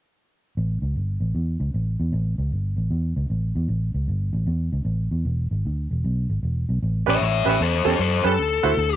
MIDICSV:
0, 0, Header, 1, 4, 480
1, 0, Start_track
1, 0, Tempo, 390371
1, 703, Time_signature, 4, 2, 24, 8
1, 11021, End_track
2, 0, Start_track
2, 0, Title_t, "Overdriven electric guitar"
2, 0, Program_c, 0, 29
2, 8727, Note_on_c, 0, 73, 70
2, 8731, Note_on_c, 0, 76, 72
2, 8875, Note_off_c, 0, 76, 0
2, 8881, Note_off_c, 0, 73, 0
2, 8907, Note_on_c, 0, 73, 62
2, 8912, Note_on_c, 0, 76, 61
2, 9180, Note_off_c, 0, 73, 0
2, 9190, Note_off_c, 0, 76, 0
2, 9209, Note_on_c, 0, 73, 69
2, 9214, Note_on_c, 0, 76, 78
2, 9350, Note_off_c, 0, 73, 0
2, 9359, Note_off_c, 0, 76, 0
2, 9369, Note_on_c, 0, 69, 65
2, 9389, Note_on_c, 0, 72, 75
2, 9649, Note_off_c, 0, 69, 0
2, 9671, Note_off_c, 0, 72, 0
2, 9694, Note_on_c, 0, 69, 57
2, 9704, Note_on_c, 0, 72, 64
2, 9828, Note_off_c, 0, 69, 0
2, 9832, Note_off_c, 0, 72, 0
2, 9841, Note_on_c, 0, 69, 55
2, 9852, Note_on_c, 0, 72, 62
2, 10125, Note_off_c, 0, 69, 0
2, 10139, Note_off_c, 0, 72, 0
2, 10163, Note_on_c, 0, 69, 85
2, 11021, Note_off_c, 0, 69, 0
2, 11021, End_track
3, 0, Start_track
3, 0, Title_t, "Upright piano"
3, 0, Program_c, 1, 0
3, 8684, Note_on_c, 1, 61, 61
3, 8688, Note_on_c, 1, 67, 57
3, 8689, Note_on_c, 1, 71, 69
3, 8775, Note_off_c, 1, 61, 0
3, 8777, Note_off_c, 1, 67, 0
3, 8778, Note_off_c, 1, 71, 0
3, 9158, Note_on_c, 1, 61, 65
3, 9163, Note_on_c, 1, 67, 62
3, 9170, Note_on_c, 1, 71, 74
3, 9252, Note_off_c, 1, 61, 0
3, 9255, Note_off_c, 1, 67, 0
3, 9258, Note_off_c, 1, 71, 0
3, 9651, Note_on_c, 1, 61, 70
3, 9651, Note_on_c, 1, 67, 63
3, 9651, Note_on_c, 1, 69, 72
3, 9738, Note_off_c, 1, 61, 0
3, 9738, Note_off_c, 1, 67, 0
3, 9738, Note_off_c, 1, 69, 0
3, 10126, Note_on_c, 1, 61, 70
3, 10126, Note_on_c, 1, 67, 62
3, 10131, Note_on_c, 1, 71, 73
3, 10215, Note_off_c, 1, 61, 0
3, 10215, Note_off_c, 1, 67, 0
3, 10218, Note_off_c, 1, 71, 0
3, 10609, Note_on_c, 1, 64, 68
3, 10614, Note_on_c, 1, 66, 63
3, 10617, Note_on_c, 1, 72, 69
3, 10696, Note_off_c, 1, 64, 0
3, 10699, Note_off_c, 1, 66, 0
3, 10700, Note_off_c, 1, 72, 0
3, 11021, End_track
4, 0, Start_track
4, 0, Title_t, "Fingered electric bass"
4, 0, Program_c, 2, 33
4, 704, Note_on_c, 2, 33, 82
4, 967, Note_off_c, 2, 33, 0
4, 1009, Note_on_c, 2, 37, 74
4, 1153, Note_off_c, 2, 37, 0
4, 1177, Note_on_c, 2, 31, 70
4, 1443, Note_off_c, 2, 31, 0
4, 1481, Note_on_c, 2, 33, 73
4, 1628, Note_off_c, 2, 33, 0
4, 1656, Note_on_c, 2, 40, 73
4, 1923, Note_off_c, 2, 40, 0
4, 1965, Note_on_c, 2, 37, 76
4, 2111, Note_off_c, 2, 37, 0
4, 2142, Note_on_c, 2, 33, 73
4, 2406, Note_off_c, 2, 33, 0
4, 2454, Note_on_c, 2, 40, 72
4, 2596, Note_off_c, 2, 40, 0
4, 2613, Note_on_c, 2, 33, 86
4, 2881, Note_off_c, 2, 33, 0
4, 2929, Note_on_c, 2, 37, 77
4, 3073, Note_off_c, 2, 37, 0
4, 3096, Note_on_c, 2, 31, 76
4, 3363, Note_off_c, 2, 31, 0
4, 3399, Note_on_c, 2, 33, 73
4, 3548, Note_off_c, 2, 33, 0
4, 3572, Note_on_c, 2, 40, 73
4, 3840, Note_off_c, 2, 40, 0
4, 3891, Note_on_c, 2, 37, 79
4, 4034, Note_off_c, 2, 37, 0
4, 4057, Note_on_c, 2, 33, 72
4, 4323, Note_off_c, 2, 33, 0
4, 4371, Note_on_c, 2, 40, 75
4, 4515, Note_off_c, 2, 40, 0
4, 4531, Note_on_c, 2, 33, 86
4, 4800, Note_off_c, 2, 33, 0
4, 4849, Note_on_c, 2, 37, 76
4, 4994, Note_off_c, 2, 37, 0
4, 5015, Note_on_c, 2, 31, 79
4, 5283, Note_off_c, 2, 31, 0
4, 5323, Note_on_c, 2, 33, 77
4, 5470, Note_off_c, 2, 33, 0
4, 5492, Note_on_c, 2, 40, 77
4, 5761, Note_off_c, 2, 40, 0
4, 5809, Note_on_c, 2, 37, 78
4, 5954, Note_off_c, 2, 37, 0
4, 5961, Note_on_c, 2, 33, 74
4, 6235, Note_off_c, 2, 33, 0
4, 6288, Note_on_c, 2, 40, 76
4, 6434, Note_off_c, 2, 40, 0
4, 6455, Note_on_c, 2, 28, 84
4, 6724, Note_off_c, 2, 28, 0
4, 6776, Note_on_c, 2, 32, 74
4, 6918, Note_off_c, 2, 32, 0
4, 6954, Note_on_c, 2, 38, 76
4, 7214, Note_off_c, 2, 38, 0
4, 7265, Note_on_c, 2, 28, 69
4, 7404, Note_off_c, 2, 28, 0
4, 7431, Note_on_c, 2, 35, 76
4, 7693, Note_off_c, 2, 35, 0
4, 7741, Note_on_c, 2, 32, 69
4, 7882, Note_off_c, 2, 32, 0
4, 7904, Note_on_c, 2, 28, 74
4, 8168, Note_off_c, 2, 28, 0
4, 8224, Note_on_c, 2, 35, 75
4, 8363, Note_off_c, 2, 35, 0
4, 8392, Note_on_c, 2, 33, 84
4, 8638, Note_off_c, 2, 33, 0
4, 8702, Note_on_c, 2, 33, 79
4, 8833, Note_off_c, 2, 33, 0
4, 8868, Note_on_c, 2, 33, 80
4, 9116, Note_off_c, 2, 33, 0
4, 9174, Note_on_c, 2, 33, 74
4, 9309, Note_off_c, 2, 33, 0
4, 9342, Note_on_c, 2, 40, 85
4, 9592, Note_off_c, 2, 40, 0
4, 9655, Note_on_c, 2, 40, 74
4, 9789, Note_off_c, 2, 40, 0
4, 9826, Note_on_c, 2, 42, 78
4, 10074, Note_off_c, 2, 42, 0
4, 10137, Note_on_c, 2, 42, 76
4, 10309, Note_off_c, 2, 42, 0
4, 10309, Note_on_c, 2, 38, 92
4, 10555, Note_off_c, 2, 38, 0
4, 10620, Note_on_c, 2, 38, 86
4, 10752, Note_off_c, 2, 38, 0
4, 10785, Note_on_c, 2, 38, 86
4, 11021, Note_off_c, 2, 38, 0
4, 11021, End_track
0, 0, End_of_file